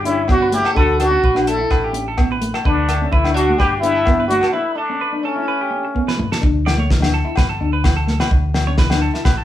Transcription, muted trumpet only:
0.04 0.27 E4 medium
0.29 0.54 F#4 medium
0.52 0.77 G4 loud
0.76 0.99 A4 loud
1.00 1.44 F#4 loud
1.48 1.92 A4 medium
2.66 3.10 D4 medium
3.11 3.36 E4 medium
3.35 3.57 F#4 loud
3.58 3.79 G4 loud
3.80 4.25 E4 loud
4.28 4.53 F#4 loud
4.52 4.77 E4 medium
4.76 5.23 D4 medium
5.23 6.14 C#4 medium

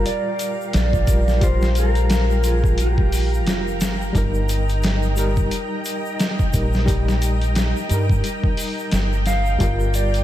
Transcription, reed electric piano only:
0.00 1.08 G3 loud
0.00 1.09 F4 medium
0.00 1.10 A#4 loud
1.08 1.39 G3 medium
1.08 1.39 F4 medium
1.08 1.40 A#4 medium
1.41 2.40 G3 medium
1.41 2.42 F4 medium
1.46 2.43 G4 loud
2.42 4.10 F3 medium
2.42 4.12 F4 medium
2.47 4.13 A#4 medium
4.13 5.13 G3 medium
4.13 5.14 D#4 medium
4.18 5.15 A#4 loud
5.17 5.37 G3 loud
5.17 5.37 D#4 medium
5.17 5.38 A#4 loud
6.53 6.84 G3 medium
6.53 6.85 D#4 medium
6.53 6.85 A#4 medium
6.86 7.86 G3 medium
6.86 7.87 D#4 medium
6.90 7.88 G4 loud
7.89 9.56 G3 medium
7.89 9.58 D#4 medium
7.94 9.59 A#4 medium
9.58 10.24 G3 medium
9.58 10.24 F4 medium
9.63 10.24 A#4 loud

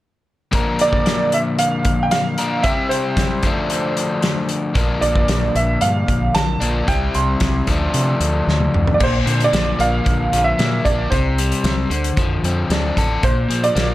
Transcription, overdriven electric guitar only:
0.52 2.36 A#2 medium
0.52 2.37 D3 medium
0.52 2.37 F3 medium
0.52 2.37 A#3 medium
0.52 2.37 D4 medium
0.52 2.37 A#4 medium
2.38 2.65 A#2 medium
2.38 2.62 D3 medium
2.38 2.63 F3 medium
2.38 2.64 A#3 medium
2.38 2.63 D4 medium
2.38 2.63 A#4 medium
2.62 3.41 C3 medium
2.62 3.42 G3 medium
2.62 3.42 C4 medium
2.62 3.43 E4 medium
2.62 3.43 G4 medium
3.43 4.74 D3 medium
3.43 4.75 F3 medium
3.43 4.76 A3 medium
3.43 4.76 D4 medium
4.74 6.59 A#2 medium
4.74 6.60 D3 medium
4.74 6.60 F3 medium
4.74 6.60 A#3 medium
4.74 6.59 D4 medium
6.60 6.88 A#2 medium
6.60 6.87 D3 medium
6.60 6.87 F3 medium
6.60 6.87 A#3 medium
6.60 6.86 D4 medium
6.87 7.65 C3 medium
6.87 7.66 G3 medium
6.87 7.67 C4 medium
6.87 7.67 E4 medium
7.68 8.98 D3 medium
7.68 8.99 F3 medium
7.68 9.00 A3 medium
7.68 9.00 D4 medium
9.00 10.32 A#2 medium
9.26 10.03 D3 medium
9.53 10.32 F3 medium
9.79 10.57 A#3 medium
10.05 11.11 D3 medium
10.33 11.12 F3 medium
10.59 11.12 A#3 medium
10.85 11.12 D4 medium
11.12 11.90 C3 medium
11.39 11.92 G3 medium
11.65 11.91 C4 medium
11.90 13.23 D3 medium
12.18 13.24 F3 medium
12.45 13.24 C4 medium
12.72 13.25 D4 medium
12.98 13.24 A4 medium
13.23 13.94 A#2 medium
13.50 13.94 F3 medium
13.75 13.94 A#3 medium

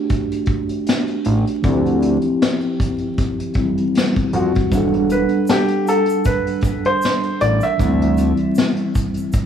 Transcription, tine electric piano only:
0.00 1.60 A3 medium
0.00 1.61 D4 medium
0.00 1.58 F#4 medium
0.00 1.62 G4 medium
1.62 3.51 F3 medium
1.62 3.53 C4 medium
1.67 3.54 E4 medium
1.67 3.55 G4 medium
3.56 4.72 E3 medium
3.56 4.69 G3 medium
3.56 4.72 C4 medium
3.56 4.73 E4 soft
4.70 7.75 G3 medium
4.70 7.76 D4 medium
4.75 7.78 A4 medium
4.75 7.77 F#5 medium
7.77 9.46 E3 medium
7.77 9.46 C4 medium
7.82 9.46 G3 medium
7.82 9.46 E4 medium

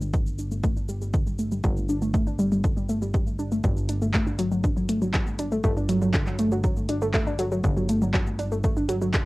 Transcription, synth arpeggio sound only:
0.02 0.08 G3 medium
0.14 0.26 G3 medium
0.39 0.51 D4 medium
0.52 0.57 A3 medium
0.64 0.74 A3 loud
0.77 0.88 D4 medium
0.89 0.95 G3 loud
1.02 1.13 G3 medium
1.14 1.24 D3 medium
1.27 1.38 G3 medium
1.39 1.49 A3 medium
1.52 1.57 G3 medium
1.64 1.76 G3 medium
1.89 2.01 D4 medium
2.02 2.07 A3 medium
2.14 2.24 A3 loud
2.27 2.38 D4 medium
2.39 2.45 G3 loud
2.52 2.63 G3 medium
2.64 2.74 D3 medium
2.77 2.88 G3 medium
2.89 2.99 A3 medium
3.02 3.07 G3 medium
3.14 3.26 G3 medium
3.39 3.51 D4 medium
3.52 3.57 A3 medium
3.64 3.76 F#3 medium
3.89 4.01 D4 medium
4.02 4.08 A3 medium
4.14 4.24 A3 loud
4.27 4.38 D4 medium
4.39 4.45 F#3 loud
4.52 4.63 F#3 medium
4.64 4.74 D3 medium
4.77 4.88 F#3 medium
4.89 4.99 A3 medium
5.02 5.08 F#3 medium
5.14 5.26 F#3 medium
5.39 5.51 D4 medium
5.52 5.58 A3 medium
5.64 5.74 A3 loud
5.77 5.88 D4 medium
5.89 5.95 F#3 loud
6.02 6.13 F#3 medium
6.14 6.24 D3 medium
6.27 6.38 F#3 medium
6.39 6.49 A3 medium
6.52 6.58 F#3 medium
6.64 6.76 F#3 medium
6.89 7.01 D4 medium
7.02 7.08 A3 medium
7.14 7.24 A3 loud
7.27 7.38 D4 medium
7.39 7.45 F#3 loud
7.52 7.63 F#3 medium
7.64 7.74 D3 medium
7.77 7.88 F#3 medium
7.89 7.99 A3 medium
8.02 8.07 F#3 medium
8.14 8.26 F#3 medium
8.39 8.51 D4 medium
8.52 8.57 A3 medium
8.64 8.74 A3 loud
8.77 8.88 D4 medium
8.89 8.95 F#3 loud
9.02 9.13 F#3 medium
9.14 9.24 D3 medium

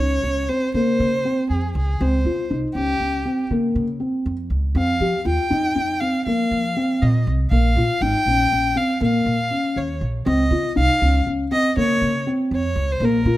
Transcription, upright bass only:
0.00 0.23 C#2 medium
0.23 0.47 C#2 medium
0.74 0.98 C#3 medium
1.00 1.23 C#3 medium
1.50 1.73 F2 medium
1.75 1.98 C#2 medium
2.01 2.24 C#2 loud
2.25 2.37 C#3 medium
2.51 2.62 C2 medium
2.75 2.98 C#2 medium
3.00 3.23 C#2 medium
3.51 3.74 C#3 medium
3.76 3.99 C#3 medium
4.26 4.49 F2 medium
4.50 4.74 C#2 medium
4.75 4.98 F2 medium
5.01 5.12 F3 medium
5.25 5.37 D#2 medium
5.51 5.74 F2 medium
5.76 5.99 F2 medium
6.27 6.49 F3 medium
6.51 6.74 F3 medium
7.02 7.25 A#2 medium
7.27 7.50 C2 medium
7.51 7.74 A#1 loud
7.76 7.88 A#2 medium
8.01 8.13 G#1 medium
8.26 8.49 A#1 medium
8.52 8.75 A#1 medium
9.01 9.24 A#2 medium
9.26 9.49 A#2 medium
9.76 9.99 D#2 medium
10.01 10.24 A#1 medium
10.26 10.49 C#2 loud
10.51 10.63 C#3 medium
10.77 10.88 C2 medium
11.02 11.24 C#2 medium
11.27 11.50 C#2 medium
11.77 12.00 C#3 medium
12.02 12.25 C#3 medium
12.51 12.74 F2 medium
12.76 12.99 C#2 loud
13.00 13.24 A#1 loud
13.25 13.37 A#2 medium

